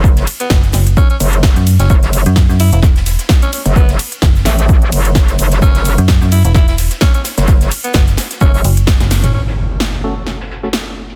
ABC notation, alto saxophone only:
X:1
M:4/4
L:1/16
Q:"Swing 16ths" 1/4=129
K:F#m
V:1 name="Alto saxophone"
z3 B, B, z3 C C z4 z C | C3 z3 E E z4 z C C z | B, z4 z A, A, z8 | C3 z3 E E E E z2 C C z2 |
z3 B, B, z3 C C z4 z C | C z12 z3 |]